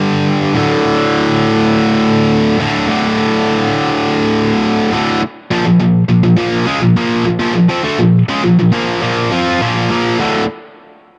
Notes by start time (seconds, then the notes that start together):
Already playing: G2 D3 G3
0.54 D2 A2 D3
2.60 D2 A2 D3
2.88 D2 A2 D3
4.92 D2 A2 D3
5.51 A#2 F3
5.65 A#2 F3
5.80 A#2 F3
6.09 A#2 F3
6.23 A#2 F3
6.36 A#2 F3 A#3
6.66 C#3 G#3
6.81 A#2 F3
6.96 A#2 F3 A#3
7.25 A#2 F3
7.39 A#2 F3
7.55 A#2 F3
7.69 F3 C4
7.84 D3 A3
7.99 A#2 F3
8.29 C#3 G#3
8.43 A#2 F3
8.59 A#2 F3
8.72 A#2 F3 A#3
9.02 A#2 F3 A#3
9.32 F3 C4 F4
9.61 A#2 F3 A#3
9.91 A#2 F3 A#3
10.19 D2 A2 D3